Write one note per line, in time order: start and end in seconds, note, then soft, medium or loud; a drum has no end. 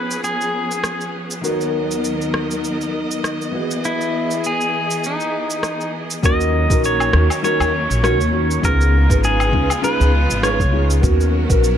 0.00 1.41 F3 medium
0.00 1.39 B3 medium
0.00 6.19 B3 medium
0.00 1.40 C#4 medium
0.00 1.40 D#4 medium
0.00 1.40 F4 medium
0.00 1.40 G#4 medium
0.00 1.41 G#4 medium
0.00 0.20 B4 medium
0.00 1.41 C#5 medium
0.11 shaker medium
0.24 1.10 G#4 medium
0.24 shaker soft
0.41 shaker soft
0.71 shaker medium
0.84 cross-stick medium
0.84 shaker soft
1.01 shaker soft
1.31 shaker medium
1.41 3.51 D#2 medium
1.41 3.49 D#3 medium
1.41 3.51 F#3 medium
1.41 3.49 B3 medium
1.41 3.50 D#4 medium
1.41 3.50 F#4 medium
1.41 3.51 A#4 medium
1.41 6.19 D#5 medium
1.41 shaker medium
1.45 3.51 C#5 medium
1.61 shaker soft
1.91 shaker medium
2.04 shaker medium
2.21 shaker soft
2.34 cross-stick medium
2.51 shaker medium
2.64 shaker soft
2.81 shaker soft
3.11 shaker medium
3.24 cross-stick medium
3.24 shaker soft
3.41 shaker soft
3.51 6.19 E3 medium
3.51 6.21 E3 medium
3.51 6.19 B3 medium
3.51 6.20 F#4 medium
3.51 6.21 G#4 medium
3.51 6.20 G#4 medium
3.51 6.21 D#5 medium
3.71 shaker medium
3.85 4.46 E4 medium
3.85 shaker soft
4.01 shaker soft
4.31 shaker medium
4.44 5.07 G#4 medium
4.44 shaker soft
4.61 shaker soft
4.91 shaker medium
5.04 5.91 D#4 medium
5.04 shaker soft
5.20 shaker soft
5.50 shaker medium
5.63 cross-stick medium
5.63 shaker soft
5.81 shaker soft
6.10 shaker medium
6.22 6.66 D#2 loud
6.22 8.61 D#3 medium
6.22 8.61 F#3 medium
6.22 8.61 A#3 medium
6.22 6.66 C#4 medium
6.22 8.61 C#4 medium
6.22 6.66 D#4 medium
6.22 6.66 F4 medium
6.22 6.66 F#4 medium
6.22 6.66 A#4 medium
6.22 6.85 D#5 loud
6.22 kick loud
6.22 shaker medium
6.41 shaker soft
6.69 7.10 A#1 medium
6.69 7.10 C#4 medium
6.69 7.10 D#4 medium
6.69 7.10 F4 medium
6.69 7.10 F#4 medium
6.69 7.11 A#4 loud
6.69 kick loud
6.69 shaker medium
6.84 7.43 C#5 loud
6.84 shaker medium
7.00 low woodblock medium
7.00 shaker soft
7.13 7.27 D#2 medium
7.13 7.27 C#4 medium
7.13 7.27 D#4 medium
7.13 7.27 F4 medium
7.13 7.27 F#4 medium
7.13 7.28 A#4 medium
7.13 cross-stick medium
7.30 low woodblock medium
7.30 shaker medium
7.42 7.69 C#4 medium
7.42 7.70 D#4 medium
7.42 7.70 F4 medium
7.42 7.70 F#4 medium
7.42 7.70 A#4 loud
7.42 8.03 C#5 loud
7.42 shaker medium
7.60 7.85 D#2 medium
7.60 low woodblock medium
7.60 shaker soft
7.90 8.20 A#1 medium
7.90 shaker medium
8.02 8.16 C#4 loud
8.02 8.17 D#4 medium
8.02 8.17 F4 medium
8.02 8.17 F#4 medium
8.02 8.17 A#4 loud
8.02 8.66 C#5 medium
8.02 cross-stick medium
8.02 shaker soft
8.20 8.60 D#2 medium
8.20 shaker soft
8.32 8.59 C#4 medium
8.32 8.60 D#4 medium
8.32 8.60 F4 medium
8.32 8.60 F#4 medium
8.32 8.60 C#5 medium
8.51 shaker medium
8.62 9.06 C#2 loud
8.62 11.01 C#3 medium
8.62 11.01 G#3 medium
8.62 9.06 B3 loud
8.62 11.01 B3 medium
8.62 9.05 C#4 medium
8.62 9.05 D#4 medium
8.62 9.06 F4 medium
8.62 11.01 F4 medium
8.62 9.06 G#4 medium
8.62 9.20 A#4 loud
8.62 kick loud
8.62 shaker medium
8.81 shaker soft
9.09 9.50 G#1 medium
9.09 9.49 C#4 medium
9.09 9.50 D#4 medium
9.09 9.50 F4 medium
9.09 9.50 G#4 medium
9.09 9.50 B4 loud
9.09 kick loud
9.09 shaker medium
9.24 9.84 G#4 medium
9.24 shaker medium
9.40 low woodblock medium
9.40 shaker soft
9.52 9.67 C#2 medium
9.52 9.67 C#4 medium
9.52 9.67 D#4 medium
9.52 9.67 F4 medium
9.52 9.67 G#4 medium
9.52 9.67 B4 medium
9.52 kick medium
9.70 low woodblock medium
9.70 shaker medium
9.82 10.09 C#4 medium
9.82 10.10 D#4 medium
9.82 10.10 F4 medium
9.82 10.10 G#4 medium
9.82 10.10 B4 loud
9.82 10.46 B4 medium
9.82 shaker medium
10.00 10.25 C#2 medium
10.00 shaker soft
10.30 10.61 G#1 medium
10.30 shaker medium
10.42 10.56 C#4 medium
10.42 10.57 D#4 loud
10.42 10.57 F4 medium
10.42 10.57 G#4 medium
10.42 10.57 B4 loud
10.42 10.87 C#5 medium
10.42 cross-stick medium
10.42 shaker medium
10.60 11.00 C#2 medium
10.60 kick medium
10.60 shaker soft
10.72 10.99 C#4 medium
10.72 11.00 D#4 medium
10.72 11.00 F4 medium
10.72 11.00 G#4 medium
10.72 11.01 C#5 medium
10.90 shaker medium
11.01 11.46 D#2 loud
11.01 11.78 F#3 medium
11.01 11.45 B3 medium
11.01 11.78 B3 medium
11.01 11.45 C#4 medium
11.01 11.46 D#4 medium
11.01 11.46 F#4 medium
11.01 11.78 F#4 medium
11.01 11.46 A#4 loud
11.01 11.78 A#4 medium
11.01 kick loud
11.01 shaker medium
11.21 shaker soft
11.49 11.78 A#1 medium
11.49 11.78 B3 loud
11.49 11.78 C#4 medium
11.49 11.78 D#4 medium
11.49 11.78 F#4 medium
11.49 11.78 A#4 loud
11.49 kick loud
11.49 shaker medium
11.64 shaker medium